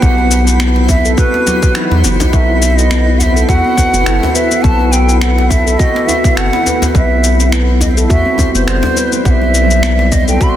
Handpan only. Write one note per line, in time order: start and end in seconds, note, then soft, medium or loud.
0.03 0.18 B3 medium
0.61 1.04 B3 medium
1.05 1.17 A4 medium
1.18 1.32 F#4 loud
1.34 1.46 B3 medium
1.47 1.62 F#3 medium
1.76 1.90 D#4 medium
2.05 2.14 B3 medium
2.21 2.32 D#4 medium
2.33 2.49 B3 medium
2.91 3.34 B3 medium
3.36 3.48 A4 medium
3.49 3.63 F#4 loud
3.65 3.92 B3 medium
3.93 4.06 B3 loud
4.35 4.50 B4 medium
4.51 4.63 B3 medium
4.64 4.79 B3 medium
5.22 5.65 B3 medium
5.66 5.78 A4 medium
5.79 5.94 F#4 loud
5.95 6.23 B3 medium
6.24 6.36 B3 loud
6.66 6.81 B4 medium
6.82 6.93 B3 medium
6.94 7.10 B3 medium
7.52 7.96 B3 medium
7.97 8.09 A4 medium
8.10 8.24 F#4 loud
8.26 8.53 C4 medium
8.55 8.67 B3 loud
8.97 9.12 B4 medium
9.13 9.24 C4 medium
9.26 9.41 B3 medium
9.83 10.26 B3 medium
10.28 10.40 A4 medium
10.41 10.55 F#4 loud